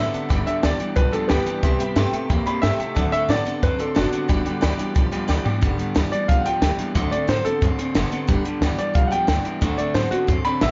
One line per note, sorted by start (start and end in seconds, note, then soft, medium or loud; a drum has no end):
0.00 0.12 D3 medium
0.00 0.13 D3 medium
0.00 0.13 F#3 medium
0.00 0.12 B3 medium
0.00 0.14 C4 medium
0.00 0.13 D4 medium
0.00 0.11 A4 medium
0.00 0.45 E5 medium
0.13 0.28 D3 medium
0.13 0.29 B3 medium
0.13 0.30 C4 soft
0.13 0.30 D4 soft
0.13 0.30 A4 soft
0.13 0.23 D5 medium
0.13 0.23 F#5 medium
0.13 0.24 A5 medium
0.13 muted upright bass stroke medium
0.13 closed hi-hat medium
0.29 0.41 G1 medium
0.29 0.46 G2 medium
0.29 0.45 G2 medium
0.29 0.47 D3 medium
0.29 0.45 D3 medium
0.29 0.47 G3 medium
0.29 0.46 B3 medium
0.29 0.45 D4 medium
0.29 0.45 G4 medium
0.29 0.39 D5 medium
0.29 0.40 G5 medium
0.29 0.40 B5 loud
0.29 kick loud
0.29 closed hi-hat medium
0.46 0.61 G2 medium
0.46 0.62 D3 medium
0.46 0.63 G3 soft
0.46 0.63 B3 soft
0.46 0.63 D4 soft
0.46 0.63 G4 soft
0.46 0.56 D5 medium
0.46 0.63 E5 medium
0.46 0.56 G5 medium
0.46 0.56 B5 medium
0.46 muted upright bass stroke medium
0.46 closed hi-hat medium
0.63 0.74 D2 medium
0.63 0.78 G2 medium
0.63 0.80 G2 medium
0.63 0.80 D3 medium
0.63 0.78 E3 medium
0.63 0.80 G3 medium
0.63 0.79 B3 medium
0.63 0.79 D4 medium
0.63 0.78 G4 loud
0.63 0.73 D5 loud
0.63 0.95 D5 medium
0.63 0.73 G5 medium
0.63 0.73 A5 loud
0.63 snare loud
0.63 closed hi-hat medium
0.78 0.94 G2 medium
0.78 0.95 E3 medium
0.78 0.94 G3 soft
0.78 0.95 B3 soft
0.78 0.96 D4 soft
0.78 0.96 G4 medium
0.78 0.89 D5 medium
0.78 0.89 G5 medium
0.78 0.90 D6 medium
0.78 muted upright bass stroke medium
0.78 closed hi-hat medium
0.95 1.07 B1 medium
0.95 1.11 G2 medium
0.95 1.11 F3 medium
0.95 1.13 G3 medium
0.95 1.13 B3 medium
0.95 1.12 D4 medium
0.95 1.10 G4 medium
0.95 1.12 B4 medium
0.95 1.06 D5 medium
0.95 1.06 G5 medium
0.95 1.07 A5 medium
0.95 kick loud
0.95 closed hi-hat medium
1.12 1.28 G2 medium
1.12 1.28 F3 medium
1.12 1.29 G3 soft
1.12 1.29 B3 soft
1.12 1.30 D4 soft
1.12 1.29 G4 soft
1.12 1.29 A4 medium
1.12 1.23 D5 medium
1.12 1.23 G5 medium
1.12 1.23 A5 medium
1.12 closed hi-hat medium
1.28 1.41 D2 medium
1.28 1.46 G2 medium
1.28 1.44 G2 medium
1.28 1.46 D3 medium
1.28 1.45 E3 medium
1.28 1.46 G3 medium
1.28 2.25 B3 medium
1.28 1.47 B3 medium
1.28 1.46 D4 medium
1.28 2.26 G4 medium
1.28 1.45 G4 medium
1.28 1.39 D5 loud
1.28 1.39 G5 medium
1.28 1.39 B5 loud
1.28 snare loud
1.28 closed hi-hat medium
1.45 1.61 G2 medium
1.45 1.61 E3 medium
1.45 1.63 G3 soft
1.45 1.64 B3 soft
1.45 1.63 D4 soft
1.45 1.63 G4 medium
1.45 1.56 D5 medium
1.45 1.56 G5 medium
1.45 1.57 A5 medium
1.45 muted upright bass stroke medium
1.45 closed hi-hat medium
1.63 1.74 C2 medium
1.63 1.78 C3 medium
1.63 1.80 C3 medium
1.63 1.78 G3 medium
1.63 1.80 G3 medium
1.63 1.80 C4 medium
1.63 1.79 E4 medium
1.63 1.78 G4 medium
1.63 1.73 E5 loud
1.63 1.73 G5 medium
1.63 1.73 C6 loud
1.63 kick loud
1.63 closed hi-hat loud
1.79 1.95 C3 medium
1.79 1.95 G3 medium
1.79 1.95 C4 soft
1.79 1.96 E4 medium
1.79 1.96 G4 medium
1.79 1.89 E5 medium
1.79 1.90 G5 medium
1.79 1.90 B5 medium
1.79 closed hi-hat medium
1.96 2.07 G2 medium
1.96 2.12 C3 medium
1.96 2.13 G3 medium
1.96 2.12 A3 medium
1.96 2.13 C4 loud
1.96 2.12 E4 loud
1.96 2.11 G4 loud
1.96 2.06 E5 loud
1.96 2.06 G5 loud
1.96 2.06 C6 loud
1.96 snare loud
1.96 closed hi-hat medium
2.12 2.28 C3 medium
2.12 2.28 A3 medium
2.12 2.29 C4 soft
2.12 2.30 E4 medium
2.12 2.29 G4 medium
2.12 2.23 E5 medium
2.12 2.23 G5 medium
2.12 2.23 C6 medium
2.12 muted upright bass stroke medium
2.12 closed hi-hat medium
2.29 2.41 E2 medium
2.29 2.45 C3 medium
2.29 2.46 G3 medium
2.29 2.45 A#3 medium
2.29 2.46 C4 medium
2.29 2.46 E4 medium
2.29 2.44 G4 medium
2.29 2.39 E5 medium
2.29 2.39 G5 medium
2.29 2.40 B5 medium
2.29 kick loud
2.29 closed hi-hat medium
2.46 2.61 C3 medium
2.46 2.62 A#3 medium
2.46 2.62 C4 soft
2.46 2.62 E4 soft
2.46 2.63 G4 medium
2.46 2.56 E5 medium
2.46 2.56 G5 medium
2.46 2.62 B5 medium
2.46 2.56 C6 medium
2.46 muted upright bass stroke medium
2.46 closed hi-hat medium
2.62 2.74 G2 medium
2.62 2.79 C3 medium
2.62 2.78 C3 medium
2.62 2.79 G3 medium
2.62 2.78 A3 loud
2.62 2.80 C4 medium
2.62 2.80 E4 medium
2.62 2.78 G4 medium
2.62 3.11 E5 medium
2.62 2.73 E5 loud
2.62 2.73 G5 medium
2.62 2.73 C6 medium
2.62 snare loud
2.62 closed hi-hat medium
2.78 2.95 C3 medium
2.78 2.95 A3 medium
2.78 2.96 C4 soft
2.78 2.97 E4 soft
2.78 2.96 G4 soft
2.78 2.89 E5 medium
2.78 2.89 G5 medium
2.78 2.89 A5 medium
2.78 muted upright bass stroke medium
2.78 closed hi-hat medium
2.95 3.07 D2 loud
2.95 3.12 D3 medium
2.95 3.11 D3 medium
2.95 3.13 F#3 medium
2.95 3.11 A3 medium
2.95 3.13 C4 medium
2.95 3.13 D4 medium
2.95 3.12 A4 medium
2.95 3.05 D5 medium
2.95 3.06 F#5 medium
2.95 3.06 A5 loud
2.95 kick loud
2.95 closed hi-hat medium
3.12 3.28 D3 medium
3.12 3.28 A3 loud
3.12 3.29 D4 soft
3.12 3.29 A4 medium
3.12 3.22 D5 medium
3.12 3.29 E5 loud
3.12 3.23 F#5 medium
3.12 3.23 B5 medium
3.12 muted upright bass stroke medium
3.12 closed hi-hat medium
3.16 3.29 C4 soft
3.28 3.40 A2 loud
3.28 3.46 D3 medium
3.28 3.44 D3 medium
3.28 3.46 F#3 medium
3.28 3.45 B3 medium
3.28 3.46 C4 medium
3.28 3.45 D4 medium
3.28 3.44 A4 medium
3.28 3.39 D5 loud
3.28 3.62 D5 medium
3.28 3.39 F#5 medium
3.28 3.39 A5 loud
3.28 snare loud
3.28 closed hi-hat medium
3.45 3.61 D3 medium
3.45 3.61 B3 medium
3.45 3.62 C4 soft
3.45 3.63 D4 soft
3.45 3.62 A4 medium
3.45 3.56 D5 medium
3.45 3.56 F#5 medium
3.45 3.56 A5 medium
3.45 muted upright bass stroke medium
3.45 closed hi-hat medium
3.61 3.73 F#2 medium
3.61 3.77 D3 medium
3.61 3.79 F#3 medium
3.61 3.78 C4 medium
3.61 3.80 C4 medium
3.61 3.79 D4 medium
3.61 3.77 A4 medium
3.61 3.79 B4 medium
3.61 3.72 D5 medium
3.61 3.72 F#5 medium
3.61 3.72 A5 medium
3.61 kick loud
3.61 closed hi-hat medium
3.78 3.94 D3 medium
3.78 3.94 C4 medium
3.78 3.95 C4 soft
3.78 3.95 D4 soft
3.78 3.95 A4 medium
3.78 3.96 A4 medium
3.78 3.89 D5 medium
3.78 3.89 F#5 medium
3.78 3.89 C6 medium
3.78 muted upright bass stroke medium
3.78 closed hi-hat medium
3.95 4.07 F#1 medium
3.95 4.12 D3 medium
3.95 4.11 D3 medium
3.95 4.12 F#3 medium
3.95 4.11 B3 medium
3.95 4.12 C4 medium
3.95 4.92 D4 medium
3.95 4.12 D4 medium
3.95 4.93 F#4 medium
3.95 4.10 A4 medium
3.95 4.05 D5 loud
3.95 4.05 F#5 medium
3.95 4.06 A5 loud
3.95 snare loud
3.95 closed hi-hat medium
4.11 4.27 D3 medium
4.11 4.28 B3 medium
4.11 4.29 C4 soft
4.11 4.29 D4 soft
4.11 4.29 A4 soft
4.11 4.22 D5 medium
4.11 4.22 F#5 medium
4.11 4.22 A5 medium
4.11 muted upright bass stroke medium
4.11 closed hi-hat medium
4.28 4.40 G1 medium
4.28 4.46 G2 medium
4.28 4.44 G2 medium
4.28 4.46 D3 medium
4.28 4.44 D3 medium
4.28 4.46 G3 medium
4.28 4.46 B3 medium
4.28 4.45 D4 medium
4.28 4.44 G4 medium
4.28 4.39 D5 medium
4.28 4.39 G5 medium
4.28 4.39 B5 loud
4.28 kick loud
4.28 closed hi-hat medium
4.45 4.60 G2 medium
4.45 4.61 D3 medium
4.45 4.62 G3 medium
4.45 4.62 B3 medium
4.45 4.62 D4 medium
4.45 4.62 G4 medium
4.45 4.55 D5 medium
4.45 4.56 G5 medium
4.45 4.56 B5 medium
4.45 muted upright bass stroke medium
4.45 closed hi-hat medium
4.61 4.74 D2 medium
4.61 4.77 G2 medium
4.61 4.79 G2 medium
4.61 4.79 D3 medium
4.61 4.77 E3 medium
4.61 4.79 G3 medium
4.61 4.78 B3 medium
4.61 4.77 D4 loud
4.61 4.77 G4 loud
4.61 4.72 D5 loud
4.61 4.72 G5 loud
4.61 4.72 B5 loud
4.61 snare loud
4.61 closed hi-hat medium
4.78 4.94 G2 medium
4.78 4.94 E3 medium
4.78 4.94 G3 soft
4.78 4.95 B3 soft
4.78 4.95 D4 medium
4.78 4.95 G4 medium
4.78 4.88 D5 medium
4.78 4.89 G5 medium
4.78 4.89 B5 loud
4.78 muted upright bass stroke medium
4.78 closed hi-hat medium
4.94 5.07 B1 medium
4.94 5.11 G2 medium
4.94 5.11 F3 medium
4.94 5.12 G3 medium
4.94 5.12 B3 medium
4.94 5.12 D4 medium
4.94 5.10 G4 medium
4.94 5.05 D5 medium
4.94 5.05 G5 medium
4.94 5.06 B5 loud
4.94 kick loud
4.94 closed hi-hat medium
5.11 5.27 G2 medium
5.11 5.27 F3 medium
5.11 5.27 G3 soft
5.11 5.28 B3 medium
5.11 5.28 D4 medium
5.11 5.28 G4 medium
5.11 5.22 D5 medium
5.11 5.22 G5 medium
5.11 5.22 B5 medium
5.11 closed hi-hat medium
5.28 5.40 D2 medium
5.28 5.45 G2 medium
5.28 5.44 G2 medium
5.28 5.45 D3 medium
5.28 5.44 E3 medium
5.28 5.45 G3 medium
5.28 5.46 B3 medium
5.28 5.44 D4 medium
5.28 5.43 G4 medium
5.28 5.38 D5 loud
5.28 5.39 G5 loud
5.28 5.39 D6 loud
5.28 snare medium
5.45 5.60 G2 medium
5.45 5.61 E3 medium
5.45 5.61 G3 soft
5.45 5.61 B3 soft
5.45 5.61 D4 medium
5.45 5.62 G4 medium
5.45 5.55 D5 medium
5.45 5.55 G5 medium
5.45 5.55 D6 medium
5.45 muted upright bass stroke medium
5.45 floor tom medium
5.61 5.74 G1 medium
5.61 5.78 G2 medium
5.61 5.77 G2 medium
5.61 5.79 D3 medium
5.61 5.77 D3 loud
5.61 5.79 G3 medium
5.61 5.78 B3 medium
5.61 5.78 D4 loud
5.61 5.77 G4 medium
5.61 kick loud
5.61 closed hi-hat medium
5.78 5.94 G2 medium
5.78 5.94 D3 medium
5.78 5.94 G3 medium
5.78 5.95 B3 medium
5.78 5.95 D4 medium
5.78 5.95 G4 medium
5.78 muted upright bass stroke medium
5.78 closed hi-hat medium
5.95 6.07 D2 medium
5.95 6.12 G2 medium
5.95 6.10 G2 medium
5.95 6.12 D3 medium
5.95 6.11 E3 medium
5.95 6.12 G3 medium
5.95 6.11 B3 medium
5.95 6.10 D4 medium
5.95 6.09 G4 medium
5.95 snare loud
5.95 closed hi-hat medium
6.10 6.27 G2 medium
6.10 6.27 E3 medium
6.10 6.27 G3 soft
6.10 6.28 B3 soft
6.10 6.28 D4 medium
6.10 6.28 G4 soft
6.10 6.28 D5 medium
6.10 closed hi-hat medium
6.28 6.40 B1 medium
6.28 6.44 G2 medium
6.28 6.44 F3 medium
6.28 6.45 G3 medium
6.28 6.46 B3 medium
6.28 6.45 D4 medium
6.28 6.44 G4 medium
6.28 6.45 F5 medium
6.28 kick loud
6.28 closed hi-hat medium
6.41 6.60 G2 medium
6.41 6.43 F#5 medium
6.45 6.60 F3 medium
6.45 6.61 G3 soft
6.45 6.62 B3 soft
6.45 6.62 D4 soft
6.45 6.62 G4 medium
6.45 6.94 G5 medium
6.45 closed hi-hat medium
6.61 6.73 D2 medium
6.61 6.77 G2 medium
6.61 6.78 G2 medium
6.61 6.79 D3 medium
6.61 6.77 E3 medium
6.61 6.79 G3 medium
6.61 6.79 B3 medium
6.61 6.78 D4 medium
6.61 6.77 G4 medium
6.61 snare loud
6.61 closed hi-hat medium
6.78 6.93 G2 medium
6.78 6.94 E3 medium
6.78 6.95 G3 soft
6.78 6.95 B3 soft
6.78 6.95 D4 soft
6.78 6.95 G4 soft
6.78 muted upright bass stroke medium
6.78 closed hi-hat medium
6.94 7.06 D2 loud
6.94 7.10 D3 medium
6.94 7.12 D3 medium
6.94 7.12 F#3 medium
6.94 7.10 A3 medium
6.94 7.12 C4 medium
6.94 7.12 D4 medium
6.94 7.10 A4 medium
6.94 kick loud
6.94 closed hi-hat loud
7.11 7.26 D3 medium
7.11 7.27 A3 medium
7.11 7.27 C4 soft
7.11 7.28 D4 medium
7.11 7.28 A4 soft
7.11 7.28 D5 medium
7.11 muted upright bass stroke medium
7.11 closed hi-hat medium
7.27 7.39 A2 medium
7.27 7.45 D3 medium
7.27 7.43 D3 medium
7.27 7.45 F#3 medium
7.27 7.43 B3 medium
7.27 7.45 C4 medium
7.27 7.45 D4 medium
7.27 7.43 A4 medium
7.27 7.45 C5 medium
7.27 snare loud
7.27 closed hi-hat medium
7.45 7.60 D3 medium
7.45 7.60 B3 medium
7.45 7.61 C4 soft
7.45 7.62 D4 soft
7.45 7.61 A4 medium
7.45 7.61 A4 loud
7.45 muted upright bass stroke medium
7.45 closed hi-hat medium
7.61 7.73 F#2 medium
7.61 7.77 D3 medium
7.61 7.78 F#3 medium
7.61 7.79 C4 medium
7.61 7.77 C4 medium
7.61 7.79 D4 medium
7.61 7.77 A4 medium
7.61 kick loud
7.61 closed hi-hat medium
7.78 7.93 D3 medium
7.78 7.94 C4 medium
7.78 7.94 C4 soft
7.78 7.95 D4 medium
7.78 7.95 A4 medium
7.78 muted upright bass stroke medium
7.78 closed hi-hat medium
7.95 8.06 F#1 medium
7.95 8.11 D3 loud
7.95 8.10 D3 medium
7.95 8.12 F#3 medium
7.95 8.11 B3 loud
7.95 8.12 C4 medium
7.95 8.11 D4 loud
7.95 8.10 A4 loud
7.95 snare loud
7.95 closed hi-hat medium
8.11 8.27 D3 medium
8.11 8.27 B3 medium
8.11 8.28 C4 soft
8.11 8.28 D4 soft
8.11 8.28 A4 medium
8.11 closed hi-hat medium
8.27 8.39 G1 loud
8.27 8.44 G2 medium
8.27 8.43 G2 medium
8.27 8.45 D3 medium
8.27 8.44 D3 loud
8.27 8.45 G3 medium
8.27 8.45 B3 loud
8.27 8.45 D4 loud
8.27 8.43 G4 loud
8.27 kick loud
8.27 closed hi-hat medium
8.45 8.60 G2 medium
8.45 8.60 D3 medium
8.45 8.61 G3 medium
8.45 8.62 B3 soft
8.45 8.62 D4 medium
8.45 8.61 G4 medium
8.45 closed hi-hat medium
8.61 8.72 D2 medium
8.61 8.78 G2 medium
8.61 8.77 G2 medium
8.61 8.79 D3 medium
8.61 8.77 E3 medium
8.61 8.79 G3 loud
8.61 8.78 B3 loud
8.61 8.77 D4 loud
8.61 8.76 G4 loud
8.61 snare loud
8.61 closed hi-hat medium
8.78 8.93 G2 medium
8.78 8.94 E3 medium
8.78 8.92 G3 soft
8.78 8.93 B3 soft
8.78 8.94 D4 medium
8.78 8.94 G4 medium
8.78 8.94 D5 medium
8.78 muted upright bass stroke medium
8.78 closed hi-hat medium
8.94 9.06 B1 medium
8.94 9.10 G2 medium
8.94 9.10 F3 medium
8.94 9.11 G3 medium
8.94 9.11 B3 medium
8.94 9.10 D4 medium
8.94 9.09 G4 medium
8.94 9.11 F5 medium
8.94 kick loud
8.94 closed hi-hat medium
9.07 9.28 G4 soft
9.07 9.10 F#5 medium
9.11 9.27 G2 medium
9.11 9.27 F3 medium
9.11 9.27 G3 soft
9.11 9.27 B3 soft
9.11 9.28 D4 medium
9.11 9.60 G5 medium
9.11 closed hi-hat medium
9.27 9.39 D2 medium
9.27 9.44 G2 medium
9.27 9.43 G2 medium
9.27 9.45 D3 medium
9.27 9.43 E3 medium
9.27 9.45 G3 medium
9.27 9.45 B3 medium
9.27 9.45 D4 medium
9.27 9.43 G4 loud
9.27 snare loud
9.27 closed hi-hat medium
9.45 9.60 G2 medium
9.45 9.60 E3 medium
9.45 9.61 G3 soft
9.45 9.62 B3 soft
9.45 9.61 D4 soft
9.45 9.61 G4 medium
9.45 closed hi-hat medium
9.61 9.73 D2 medium
9.61 9.78 D3 medium
9.61 9.77 D3 medium
9.61 9.78 F#3 loud
9.61 9.77 A3 loud
9.61 9.78 C4 loud
9.61 9.78 D4 loud
9.61 9.76 A4 medium
9.61 kick loud
9.61 closed hi-hat medium
9.78 9.93 D3 medium
9.78 9.93 A3 medium
9.78 9.94 C4 soft
9.78 9.94 D4 soft
9.78 9.94 A4 soft
9.78 9.94 D5 medium
9.78 muted upright bass stroke medium
9.78 closed hi-hat medium
9.94 10.05 A2 loud
9.94 10.11 D3 medium
9.94 10.10 D3 medium
9.94 10.12 F#3 medium
9.94 10.10 B3 medium
9.94 10.12 C4 medium
9.94 10.11 D4 medium
9.94 10.10 A4 medium
9.94 10.11 C5 medium
9.94 snare loud
9.94 closed hi-hat medium
10.11 10.26 D3 medium
10.11 10.27 B3 medium
10.11 10.27 C4 soft
10.11 10.28 D4 soft
10.11 10.27 F#4 loud
10.11 10.28 A4 medium
10.11 muted upright bass stroke medium
10.11 closed hi-hat medium
10.27 10.39 F#2 medium
10.27 10.43 D3 medium
10.27 10.44 F#3 medium
10.27 10.45 C4 medium
10.27 10.43 C4 medium
10.27 10.44 D4 medium
10.27 10.43 A4 medium
10.27 kick loud
10.27 closed hi-hat medium
10.44 10.60 D3 medium
10.44 10.60 C4 medium
10.44 10.60 C4 soft
10.44 10.61 D4 soft
10.44 10.61 A4 soft
10.44 10.61 B5 loud
10.44 muted upright bass stroke medium
10.44 closed hi-hat medium
10.61 10.71 A1 medium
10.61 10.71 D3 medium
10.61 10.71 F#3 medium
10.61 10.71 B3 medium
10.61 10.71 C4 medium
10.61 10.71 D4 medium
10.61 10.71 A4 medium
10.61 10.71 E5 medium
10.61 snare loud
10.61 closed hi-hat medium